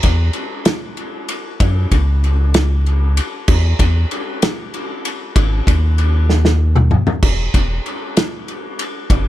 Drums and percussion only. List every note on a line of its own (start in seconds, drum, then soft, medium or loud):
0.03 kick medium
0.03 ride medium
0.33 ride medium
0.65 snare loud
0.65 ride medium
0.97 ride medium
1.28 ride medium
1.60 kick loud
1.60 ride loud
1.91 kick medium
1.91 ride medium
2.24 ride medium
2.54 snare loud
2.54 ride loud
2.86 ride medium
3.17 ride medium
3.48 kick loud
3.48 crash loud
3.79 kick medium
3.79 ride medium
4.11 ride medium
4.42 snare loud
4.42 ride loud
4.74 ride medium
5.05 ride medium
5.36 kick loud
5.36 ride loud
5.67 kick medium
5.67 ride medium
5.98 ride medium
6.29 snare medium
6.45 snare medium
6.75 mid tom medium
6.91 mid tom loud
7.07 floor tom loud
7.22 kick loud
7.22 crash loud
7.54 kick medium
7.54 ride medium
7.86 ride medium
8.17 snare loud
8.17 ride medium
8.48 ride medium
8.79 ride medium
9.10 kick loud
9.10 ride loud